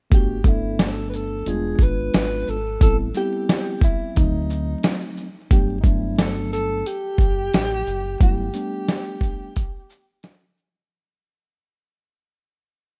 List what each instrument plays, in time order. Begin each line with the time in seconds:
0.10 fingered electric bass G1, tine electric piano A3 B3 D4 F#4, alto saxophone G4, kick, closed hi-hat
0.44 tine electric piano A3 B3 D4 A4, kick, shaker
0.48 alto saxophone E4
0.79 alto saxophone A4, snare, closed hi-hat
1.09 alto saxophone B4
1.14 alto saxophone A4, closed hi-hat, shaker
1.46 fingered electric bass E1, tine electric piano G3 B3 D4 F4, alto saxophone G#4, closed hi-hat
1.52 tine electric piano G#3
1.79 fingered electric bass G#1, alto saxophone B4, kick, shaker
2.14 fingered electric bass G#1, snare, closed hi-hat
2.48 fingered electric bass G#1, alto saxophone A4, shaker
2.80 fingered electric bass A1, tine electric piano G3 B3 C4 E4, alto saxophone A4, kick, closed hi-hat
3.14 tine electric piano G3 B3 C4 E4, alto saxophone G4, shaker
3.49 snare, closed hi-hat
3.81 alto saxophone E4, kick, closed hi-hat, shaker
4.15 fingered electric bass D2, tine electric piano D#3 A3 C4 D#4, alto saxophone D#4, kick, closed hi-hat
4.22 tine electric piano F#3
4.50 shaker
4.83 snare, closed hi-hat
5.17 shaker
5.50 fingered electric bass G1, tine electric piano F#3 A3 B3 D4, alto saxophone G4, kick, closed hi-hat
5.81 tine electric piano F#3, alto saxophone D#4, kick, shaker
5.85 tine electric piano A3 B3 D4, alto saxophone E4
6.19 alto saxophone A4, snare, closed hi-hat
6.53 alto saxophone A4, closed hi-hat, shaker
6.86 alto saxophone G4, closed hi-hat
7.18 fingered electric bass F#1, kick, shaker
7.54 fingered electric bass A1, snare, closed hi-hat
7.87 fingered electric bass F#1, shaker
8.20 fingered electric bass G1, tine electric piano F#3 A3 B3 E4, alto saxophone G4, kick, closed hi-hat
8.53 tine electric piano G3 A3 B3 D4, closed hi-hat, shaker
8.88 snare, closed hi-hat
9.21 kick, closed hi-hat, shaker
9.56 kick, closed hi-hat
9.90 shaker
10.23 snare, closed hi-hat
10.57 shaker